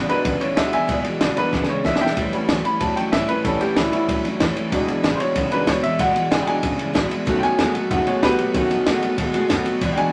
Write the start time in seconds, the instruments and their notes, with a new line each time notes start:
0.08 clean electric guitar E2 B2, steel-string acoustic guitar E3 G#3 D4 E4, upright piano F#3 G#3 D4 B4, muted upright bass stroke, ride
0.24 upright bass B1, clean electric guitar E2 C#3, steel-string acoustic guitar E3 G#3 D4 E4, kick, snare, ride
0.40 clean electric guitar E2 C#3, steel-string acoustic guitar E3 G#3 D4 E4, upright piano C#5, snare, ride
0.56 upright bass C#2, steel-string acoustic guitar E2 B2 E3 G#3 D4 E4, clean electric guitar E2 B2, upright piano F#3 G#3 D4 E5, kick, snare, ride
0.71 clean electric guitar E2 B2, upright bass E2, steel-string acoustic guitar E3 G#3 D4 E4, upright piano E5 G#5, ride
0.87 upright bass E1, steel-string acoustic guitar E2 B2 E3 G#3 D4 E4, clean electric guitar E2 B2, kick, snare, ride
1.04 clean electric guitar E2 B2, steel-string acoustic guitar E3 G#3 D4 E4, snare, ride
1.21 upright bass G#1, steel-string acoustic guitar E2 B2 E3 G#3 D4 E4, clean electric guitar E2 C#3, snare, ride
1.36 clean electric guitar E2 B2, steel-string acoustic guitar E3 G#3 D4 E4, upright piano F#3 G#3 D4 B4, ride
1.51 upright bass G#1, clean electric guitar E2 C#3, steel-string acoustic guitar E3 G#3 D4 E4, kick, snare
1.63 snare
1.68 clean electric guitar E2 C#3, steel-string acoustic guitar E3 G#3 D4 E4, upright piano C#5, muted upright bass stroke
1.84 upright bass B1, steel-string acoustic guitar E2 B2 E3 G#3 D4 E4, clean electric guitar E2 B2, upright piano E5, kick, snare
1.96 snare
2.00 clean electric guitar E2 B2, steel-string acoustic guitar E3 G#3 D4 E4, upright piano E5 G5, muted upright bass stroke
2.06 snare
2.16 upright bass A1, steel-string acoustic guitar A2 E3 G3 C#4 E4, clean electric guitar A2 E3, kick, snare, ride
2.32 clean electric guitar A2 E3, upright piano G3 B3 C#4, steel-string acoustic guitar G3 C#4 E4, muted upright bass stroke, snare, ride
2.48 upright bass D2, steel-string acoustic guitar A2 E3 G3 C#4 E4, clean electric guitar A2 F#3, snare, ride
2.64 clean electric guitar A2 E3, steel-string acoustic guitar G3 C#4 E4, upright piano B5, muted upright bass stroke, ride
2.80 upright bass E2, clean electric guitar A2 F#3, steel-string acoustic guitar E3 G3 C#4 E4, upright piano A5, kick, snare, ride
2.96 clean electric guitar A2 F#3, steel-string acoustic guitar G3 C#4 E4, upright piano G5, snare, ride
3.12 upright bass F#2, clean electric guitar A2 E3, steel-string acoustic guitar A2 E3 G3 C#4 E4, upright piano E5, kick, snare, ride
3.28 clean electric guitar A2 E3, steel-string acoustic guitar G3 C#4 E4, upright piano B4, ride
3.44 upright bass A1, clean electric guitar A2 E3, steel-string acoustic guitar A2 E3 G3 C#4 E4, upright piano G3 B3 C#4 A4, kick, snare, ride
3.60 clean electric guitar A2 E3, steel-string acoustic guitar G3 C#4 E4, upright piano G4, snare, ride
3.76 upright bass C#2, steel-string acoustic guitar A2 E3 G3 C#4 E4, clean electric guitar A2 F#3, upright piano E4, snare, ride
3.92 clean electric guitar A2 E3, upright piano G3 B3 C#4 E4, steel-string acoustic guitar G3 C#4 E4, muted upright bass stroke, ride
4.08 upright bass C#2, clean electric guitar A2 F#3, steel-string acoustic guitar E3 G3 C#4 E4, kick, ride
4.24 clean electric guitar A2 F#3, steel-string acoustic guitar G3 C#4 E4, muted upright bass stroke, snare, ride
4.40 upright bass E2, clean electric guitar A2 E3, steel-string acoustic guitar A2 E3 G3 C#4 E4, kick, snare, ride
4.56 clean electric guitar A2 E3, steel-string acoustic guitar G3 C#4 E4, ride
4.71 upright bass E1, clean electric guitar E2 B2, steel-string acoustic guitar E2 B2 E3 G#3 D4 E4, upright piano F#3 G#3 D4, kick, ride
4.87 clean electric guitar E2 B2, steel-string acoustic guitar E3 G#3 D4 E4, snare, ride
5.03 upright bass A1, steel-string acoustic guitar E2 B2 E3 G#3 D4 E4, clean electric guitar E2 C#3, snare, ride
5.15 steel-string acoustic guitar E4, upright piano C5
5.20 clean electric guitar E2 B2, steel-string acoustic guitar E3 G#3 D4, upright piano C#5, ride
5.34 upright bass B1, clean electric guitar E2 C#3, steel-string acoustic guitar E3 G#3 D4 E4, kick, snare, ride
5.51 clean electric guitar E2 C#3, steel-string acoustic guitar E3 G#3 D4 E4, upright piano F#3 G#3 D4 B4, ride
5.67 upright bass C#2, steel-string acoustic guitar E2 B2 E3 G#3 D4 E4, clean electric guitar E2 B2, upright piano C#5, kick, snare, ride
5.83 clean electric guitar E2 B2, upright bass E2, steel-string acoustic guitar E3 G#3 D4 E4, upright piano E5, ride
5.98 upright bass E1, steel-string acoustic guitar E2 B2 E3 G#3 D4 E4, clean electric guitar E2 B2, upright piano F#5, kick, snare, ride
6.14 clean electric guitar E2 B2, steel-string acoustic guitar E3 G#3 D4 E4, muted upright bass stroke, ride
6.31 upright bass G#1, steel-string acoustic guitar E2 B2 E3 G#3 D4 E4, clean electric guitar E2 C#3, upright piano G#5, snare, ride
6.42 upright piano F#3 G5, steel-string acoustic guitar E4
6.46 clean electric guitar E2 B2, steel-string acoustic guitar E3 G#3 D4, upright piano G#3 D4 G#5, ride
6.62 upright bass G#1, clean electric guitar E2 C#3, steel-string acoustic guitar E3 G#3 D4 E4, kick, snare, ride
6.78 clean electric guitar E2 C#3, steel-string acoustic guitar E3 G#3 D4 E4, muted upright bass stroke, ride
6.93 upright bass A1, steel-string acoustic guitar E2 B2 E3 G#3 D4 E4, clean electric guitar E2 B2, kick, snare, ride
7.10 clean electric guitar E2 B2, steel-string acoustic guitar E3 G#3 D4 E4, ride
7.25 upright bass B1, steel-string acoustic guitar B2 D#3 A3 B3 F#4, clean electric guitar B2 F#3, upright piano D#3 A3 C#4, kick, snare, ride
7.39 steel-string acoustic guitar F#4, upright piano G5, muted upright bass stroke
7.43 clean electric guitar B2 F#3, steel-string acoustic guitar A3 B3, upright piano G#5, snare, ride
7.58 upright bass E2, steel-string acoustic guitar B2 D#3 A3 B3 F#4, clean electric guitar B2 G#3, snare, ride
7.74 clean electric guitar B2 F#3, steel-string acoustic guitar A3 B3 F#4, muted upright bass stroke, ride
7.90 upright bass F#2, clean electric guitar B2 G#3, steel-string acoustic guitar D#3 A3 B3 F#4, upright piano D#3 A3 C#4 F#5, kick, snare, ride
8.06 clean electric guitar B2 G#3, steel-string acoustic guitar A3 B3 F#4, upright piano C#5, muted upright bass stroke, ride
8.22 upright bass G#2, clean electric guitar B2 F#3, steel-string acoustic guitar B2 D#3 A3 B3 F#4, upright piano G4 B4, kick, snare, ride
8.38 clean electric guitar B2 F#3, upright bass B2, steel-string acoustic guitar A3 B3 F#4, ride
8.53 upright bass B1, clean electric guitar B2 F#3, steel-string acoustic guitar B2 D#3 A3 B3, upright piano D#3 A3 C#4, kick, ride
8.57 steel-string acoustic guitar F#4
8.70 clean electric guitar B2 F#3, steel-string acoustic guitar A3 B3 F#4, muted upright bass stroke, snare, ride
8.86 upright bass D#2, clean electric guitar B2 G#3, steel-string acoustic guitar B2 D#3 A3 B3 F#4, snare, ride
9.01 clean electric guitar B2 F#3, steel-string acoustic guitar A3 B3 F#4, muted upright bass stroke, ride
9.17 upright bass D#2, clean electric guitar B2 G#3, steel-string acoustic guitar D#3 A3 B3 F#4, kick, ride
9.33 clean electric guitar B2 G#3, steel-string acoustic guitar A3 B3 F#4, snare, ride
9.48 upright bass F#2, steel-string acoustic guitar B2 D#3 A3 B3 F#4, clean electric guitar B2 F#3, kick, snare, ride
9.65 clean electric guitar B2 F#3, steel-string acoustic guitar A3 B3 F#4, muted upright bass stroke, ride
9.81 upright bass E1, steel-string acoustic guitar E2 B2 E3 G#3 D4 E4, clean electric guitar E2 B2, kick, snare, ride
9.93 upright piano F#3 G5, steel-string acoustic guitar E4
9.97 clean electric guitar E2 B2, steel-string acoustic guitar E3 G#3 D4, upright piano G#3 D4 G#5, muted upright bass stroke, ride